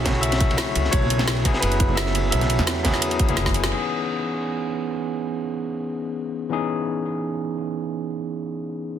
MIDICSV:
0, 0, Header, 1, 5, 480
1, 0, Start_track
1, 0, Key_signature, 4, "minor"
1, 0, Tempo, 348837
1, 1280, Time_signature, 4, 2, 24, 8
1, 12370, End_track
2, 0, Start_track
2, 0, Title_t, "Grand piano"
2, 0, Program_c, 0, 0
2, 289, Note_on_c, 0, 76, 109
2, 1251, Note_on_c, 0, 73, 104
2, 1294, Note_off_c, 0, 76, 0
2, 1934, Note_off_c, 0, 73, 0
2, 2209, Note_on_c, 0, 71, 94
2, 2687, Note_on_c, 0, 76, 96
2, 2720, Note_off_c, 0, 71, 0
2, 3150, Note_off_c, 0, 76, 0
2, 3171, Note_on_c, 0, 76, 94
2, 4091, Note_off_c, 0, 76, 0
2, 12370, End_track
3, 0, Start_track
3, 0, Title_t, "Tine electric piano"
3, 0, Program_c, 1, 4
3, 0, Control_c, 1, 64, 127
3, 0, Note_on_c, 1, 54, 77
3, 0, Note_on_c, 1, 57, 73
3, 0, Note_on_c, 1, 61, 72
3, 0, Note_on_c, 1, 64, 72
3, 0, Note_on_c, 1, 66, 111
3, 0, Note_on_c, 1, 68, 88
3, 53, Note_off_c, 1, 54, 0
3, 53, Note_on_c, 1, 54, 100
3, 65, Note_off_c, 1, 57, 0
3, 65, Note_on_c, 1, 57, 91
3, 76, Note_off_c, 1, 61, 0
3, 76, Note_on_c, 1, 61, 92
3, 89, Note_off_c, 1, 64, 0
3, 89, Note_on_c, 1, 64, 90
3, 100, Note_off_c, 1, 66, 0
3, 100, Note_on_c, 1, 66, 107
3, 1239, Note_off_c, 1, 54, 0
3, 1245, Note_off_c, 1, 57, 0
3, 1251, Note_off_c, 1, 61, 0
3, 1256, Note_on_c, 1, 54, 76
3, 1257, Note_off_c, 1, 64, 0
3, 1263, Note_off_c, 1, 66, 0
3, 1269, Note_on_c, 1, 59, 70
3, 1281, Note_on_c, 1, 61, 70
3, 1292, Note_on_c, 1, 64, 72
3, 1299, Control_c, 1, 64, 0
3, 1303, Note_off_c, 1, 68, 0
3, 1305, Note_on_c, 1, 69, 85
3, 1539, Control_c, 1, 64, 127
3, 1961, Note_off_c, 1, 54, 0
3, 1967, Note_off_c, 1, 59, 0
3, 1973, Note_off_c, 1, 61, 0
3, 1976, Note_on_c, 1, 54, 99
3, 1979, Note_off_c, 1, 64, 0
3, 1985, Note_off_c, 1, 69, 0
3, 1987, Note_on_c, 1, 59, 94
3, 2000, Note_on_c, 1, 61, 93
3, 2014, Note_on_c, 1, 64, 94
3, 2025, Note_on_c, 1, 68, 112
3, 3161, Note_off_c, 1, 54, 0
3, 3166, Note_off_c, 1, 59, 0
3, 3173, Note_off_c, 1, 61, 0
3, 3177, Note_on_c, 1, 54, 78
3, 3179, Note_off_c, 1, 64, 0
3, 3185, Note_off_c, 1, 68, 0
3, 3189, Note_on_c, 1, 59, 73
3, 3199, Note_on_c, 1, 61, 73
3, 3214, Note_on_c, 1, 64, 72
3, 3226, Note_on_c, 1, 69, 82
3, 3881, Note_off_c, 1, 54, 0
3, 3887, Note_off_c, 1, 59, 0
3, 3892, Note_off_c, 1, 61, 0
3, 3897, Note_on_c, 1, 54, 96
3, 3899, Note_off_c, 1, 64, 0
3, 3906, Note_off_c, 1, 69, 0
3, 3908, Note_on_c, 1, 59, 85
3, 3921, Note_on_c, 1, 61, 88
3, 3934, Note_on_c, 1, 64, 89
3, 3946, Note_on_c, 1, 68, 108
3, 4489, Note_off_c, 1, 54, 0
3, 4495, Note_off_c, 1, 59, 0
3, 4501, Note_off_c, 1, 61, 0
3, 4507, Note_off_c, 1, 64, 0
3, 4513, Note_off_c, 1, 68, 0
3, 4516, Note_on_c, 1, 54, 77
3, 4522, Note_on_c, 1, 59, 72
3, 4529, Note_on_c, 1, 61, 76
3, 4534, Note_on_c, 1, 64, 72
3, 4541, Note_on_c, 1, 68, 87
3, 4626, Note_off_c, 1, 54, 0
3, 4629, Note_off_c, 1, 59, 0
3, 4632, Note_off_c, 1, 61, 0
3, 4635, Note_off_c, 1, 64, 0
3, 4638, Note_off_c, 1, 68, 0
3, 5099, Note_on_c, 1, 52, 62
3, 5112, Note_on_c, 1, 59, 58
3, 5122, Note_on_c, 1, 61, 60
3, 5135, Note_on_c, 1, 63, 57
3, 5138, Control_c, 1, 64, 0
3, 5148, Note_on_c, 1, 68, 73
3, 5347, Control_c, 1, 64, 127
3, 8919, Note_off_c, 1, 52, 0
3, 8929, Note_off_c, 1, 59, 0
3, 8934, Note_off_c, 1, 61, 0
3, 8936, Note_on_c, 1, 52, 68
3, 8940, Note_off_c, 1, 63, 0
3, 8947, Note_off_c, 1, 68, 0
3, 8948, Note_on_c, 1, 59, 61
3, 8962, Note_on_c, 1, 61, 62
3, 8972, Note_on_c, 1, 63, 64
3, 8985, Note_on_c, 1, 68, 80
3, 12370, Note_off_c, 1, 52, 0
3, 12370, Note_off_c, 1, 59, 0
3, 12370, Note_off_c, 1, 61, 0
3, 12370, Note_off_c, 1, 63, 0
3, 12370, Note_off_c, 1, 68, 0
3, 12370, End_track
4, 0, Start_track
4, 0, Title_t, "Upright bass"
4, 0, Program_c, 2, 32
4, 0, Note_on_c, 2, 35, 101
4, 782, Note_off_c, 2, 35, 0
4, 1040, Note_on_c, 2, 37, 89
4, 1257, Note_off_c, 2, 37, 0
4, 1281, Note_on_c, 2, 35, 98
4, 1982, Note_off_c, 2, 35, 0
4, 2238, Note_on_c, 2, 30, 107
4, 3181, Note_off_c, 2, 30, 0
4, 3199, Note_on_c, 2, 35, 106
4, 3545, Note_off_c, 2, 35, 0
4, 3562, Note_on_c, 2, 40, 97
4, 4635, Note_on_c, 2, 30, 87
4, 4656, Note_off_c, 2, 40, 0
4, 5099, Note_off_c, 2, 30, 0
4, 12370, End_track
5, 0, Start_track
5, 0, Title_t, "Drums"
5, 73, Note_on_c, 9, 51, 83
5, 78, Note_on_c, 9, 38, 108
5, 78, Note_on_c, 9, 40, 47
5, 78, Note_on_c, 9, 42, 69
5, 80, Note_on_c, 9, 36, 62
5, 88, Note_on_c, 9, 63, 68
5, 205, Note_off_c, 9, 51, 0
5, 205, Note_on_c, 9, 51, 38
5, 215, Note_off_c, 9, 38, 0
5, 215, Note_off_c, 9, 40, 0
5, 215, Note_off_c, 9, 42, 0
5, 218, Note_off_c, 9, 36, 0
5, 226, Note_off_c, 9, 63, 0
5, 316, Note_on_c, 9, 42, 96
5, 329, Note_off_c, 9, 51, 0
5, 329, Note_on_c, 9, 51, 61
5, 439, Note_off_c, 9, 51, 0
5, 439, Note_on_c, 9, 51, 82
5, 442, Note_off_c, 9, 42, 0
5, 442, Note_on_c, 9, 42, 39
5, 449, Note_on_c, 9, 38, 101
5, 554, Note_off_c, 9, 51, 0
5, 554, Note_on_c, 9, 51, 40
5, 557, Note_off_c, 9, 42, 0
5, 557, Note_on_c, 9, 42, 63
5, 560, Note_on_c, 9, 36, 112
5, 586, Note_off_c, 9, 38, 0
5, 683, Note_on_c, 9, 63, 80
5, 691, Note_off_c, 9, 51, 0
5, 695, Note_off_c, 9, 42, 0
5, 696, Note_on_c, 9, 51, 68
5, 698, Note_off_c, 9, 36, 0
5, 791, Note_on_c, 9, 38, 111
5, 798, Note_off_c, 9, 38, 0
5, 798, Note_off_c, 9, 51, 0
5, 798, Note_on_c, 9, 38, 116
5, 798, Note_on_c, 9, 42, 101
5, 798, Note_on_c, 9, 51, 98
5, 821, Note_off_c, 9, 63, 0
5, 935, Note_off_c, 9, 38, 0
5, 935, Note_off_c, 9, 42, 0
5, 936, Note_off_c, 9, 51, 0
5, 1039, Note_on_c, 9, 42, 66
5, 1039, Note_on_c, 9, 51, 75
5, 1039, Note_on_c, 9, 62, 52
5, 1163, Note_on_c, 9, 38, 37
5, 1176, Note_off_c, 9, 51, 0
5, 1176, Note_off_c, 9, 62, 0
5, 1177, Note_off_c, 9, 42, 0
5, 1269, Note_on_c, 9, 51, 86
5, 1277, Note_on_c, 9, 42, 101
5, 1280, Note_on_c, 9, 36, 113
5, 1301, Note_off_c, 9, 38, 0
5, 1407, Note_off_c, 9, 51, 0
5, 1409, Note_on_c, 9, 63, 86
5, 1414, Note_off_c, 9, 42, 0
5, 1418, Note_off_c, 9, 36, 0
5, 1518, Note_on_c, 9, 42, 70
5, 1518, Note_on_c, 9, 51, 67
5, 1546, Note_off_c, 9, 63, 0
5, 1638, Note_on_c, 9, 38, 60
5, 1639, Note_on_c, 9, 62, 71
5, 1642, Note_on_c, 9, 40, 51
5, 1655, Note_off_c, 9, 51, 0
5, 1656, Note_off_c, 9, 42, 0
5, 1755, Note_off_c, 9, 38, 0
5, 1755, Note_on_c, 9, 38, 118
5, 1755, Note_on_c, 9, 42, 96
5, 1760, Note_on_c, 9, 51, 86
5, 1776, Note_off_c, 9, 62, 0
5, 1780, Note_off_c, 9, 40, 0
5, 1877, Note_off_c, 9, 51, 0
5, 1877, Note_on_c, 9, 51, 41
5, 1893, Note_off_c, 9, 38, 0
5, 1893, Note_off_c, 9, 42, 0
5, 1996, Note_on_c, 9, 42, 71
5, 2000, Note_off_c, 9, 51, 0
5, 2000, Note_on_c, 9, 36, 58
5, 2000, Note_on_c, 9, 51, 75
5, 2005, Note_on_c, 9, 63, 63
5, 2115, Note_on_c, 9, 38, 49
5, 2134, Note_off_c, 9, 42, 0
5, 2137, Note_off_c, 9, 36, 0
5, 2138, Note_off_c, 9, 51, 0
5, 2142, Note_off_c, 9, 63, 0
5, 2236, Note_on_c, 9, 42, 95
5, 2243, Note_on_c, 9, 51, 88
5, 2252, Note_off_c, 9, 38, 0
5, 2363, Note_off_c, 9, 42, 0
5, 2363, Note_on_c, 9, 42, 40
5, 2381, Note_off_c, 9, 51, 0
5, 2476, Note_off_c, 9, 42, 0
5, 2476, Note_on_c, 9, 42, 65
5, 2479, Note_on_c, 9, 36, 107
5, 2599, Note_on_c, 9, 63, 96
5, 2614, Note_off_c, 9, 42, 0
5, 2617, Note_off_c, 9, 36, 0
5, 2712, Note_on_c, 9, 51, 66
5, 2717, Note_on_c, 9, 38, 114
5, 2717, Note_on_c, 9, 42, 94
5, 2736, Note_off_c, 9, 63, 0
5, 2836, Note_off_c, 9, 38, 0
5, 2836, Note_on_c, 9, 38, 47
5, 2850, Note_off_c, 9, 51, 0
5, 2854, Note_off_c, 9, 42, 0
5, 2953, Note_on_c, 9, 62, 53
5, 2956, Note_on_c, 9, 51, 80
5, 2957, Note_on_c, 9, 42, 65
5, 2974, Note_off_c, 9, 38, 0
5, 3091, Note_off_c, 9, 62, 0
5, 3093, Note_off_c, 9, 51, 0
5, 3095, Note_off_c, 9, 42, 0
5, 3194, Note_on_c, 9, 51, 91
5, 3197, Note_on_c, 9, 42, 95
5, 3322, Note_off_c, 9, 42, 0
5, 3322, Note_on_c, 9, 38, 52
5, 3322, Note_on_c, 9, 42, 39
5, 3332, Note_off_c, 9, 51, 0
5, 3332, Note_on_c, 9, 63, 93
5, 3434, Note_on_c, 9, 51, 66
5, 3437, Note_off_c, 9, 42, 0
5, 3437, Note_on_c, 9, 42, 67
5, 3459, Note_off_c, 9, 38, 0
5, 3469, Note_off_c, 9, 63, 0
5, 3557, Note_on_c, 9, 62, 70
5, 3563, Note_on_c, 9, 40, 55
5, 3572, Note_off_c, 9, 51, 0
5, 3575, Note_off_c, 9, 42, 0
5, 3671, Note_on_c, 9, 51, 82
5, 3677, Note_on_c, 9, 38, 115
5, 3677, Note_on_c, 9, 42, 100
5, 3685, Note_off_c, 9, 38, 0
5, 3685, Note_on_c, 9, 38, 123
5, 3695, Note_off_c, 9, 62, 0
5, 3701, Note_off_c, 9, 40, 0
5, 3809, Note_off_c, 9, 51, 0
5, 3815, Note_off_c, 9, 42, 0
5, 3822, Note_off_c, 9, 38, 0
5, 3914, Note_on_c, 9, 38, 97
5, 3917, Note_on_c, 9, 40, 50
5, 3917, Note_on_c, 9, 42, 74
5, 3918, Note_on_c, 9, 51, 83
5, 3919, Note_on_c, 9, 36, 61
5, 3919, Note_on_c, 9, 63, 72
5, 4041, Note_off_c, 9, 38, 0
5, 4041, Note_on_c, 9, 38, 35
5, 4046, Note_off_c, 9, 51, 0
5, 4046, Note_on_c, 9, 51, 40
5, 4055, Note_off_c, 9, 40, 0
5, 4055, Note_off_c, 9, 42, 0
5, 4056, Note_off_c, 9, 36, 0
5, 4056, Note_off_c, 9, 63, 0
5, 4153, Note_off_c, 9, 51, 0
5, 4153, Note_on_c, 9, 51, 87
5, 4155, Note_on_c, 9, 42, 103
5, 4179, Note_off_c, 9, 38, 0
5, 4281, Note_off_c, 9, 51, 0
5, 4281, Note_on_c, 9, 51, 43
5, 4282, Note_off_c, 9, 42, 0
5, 4282, Note_on_c, 9, 42, 43
5, 4396, Note_off_c, 9, 42, 0
5, 4396, Note_on_c, 9, 42, 69
5, 4399, Note_on_c, 9, 36, 110
5, 4418, Note_off_c, 9, 51, 0
5, 4521, Note_off_c, 9, 42, 0
5, 4521, Note_on_c, 9, 42, 40
5, 4533, Note_on_c, 9, 63, 93
5, 4537, Note_off_c, 9, 36, 0
5, 4635, Note_off_c, 9, 42, 0
5, 4635, Note_on_c, 9, 38, 64
5, 4635, Note_on_c, 9, 42, 99
5, 4670, Note_off_c, 9, 63, 0
5, 4762, Note_off_c, 9, 38, 0
5, 4762, Note_on_c, 9, 38, 61
5, 4765, Note_on_c, 9, 36, 61
5, 4766, Note_on_c, 9, 62, 65
5, 4773, Note_off_c, 9, 42, 0
5, 4877, Note_on_c, 9, 42, 69
5, 4885, Note_off_c, 9, 62, 0
5, 4885, Note_on_c, 9, 62, 48
5, 4889, Note_on_c, 9, 51, 63
5, 4900, Note_off_c, 9, 38, 0
5, 4902, Note_off_c, 9, 36, 0
5, 5003, Note_off_c, 9, 42, 0
5, 5003, Note_on_c, 9, 38, 85
5, 5003, Note_on_c, 9, 42, 39
5, 5008, Note_off_c, 9, 38, 0
5, 5008, Note_on_c, 9, 38, 38
5, 5023, Note_off_c, 9, 62, 0
5, 5026, Note_off_c, 9, 51, 0
5, 5116, Note_on_c, 9, 49, 75
5, 5140, Note_off_c, 9, 42, 0
5, 5146, Note_off_c, 9, 38, 0
5, 5254, Note_off_c, 9, 49, 0
5, 12370, End_track
0, 0, End_of_file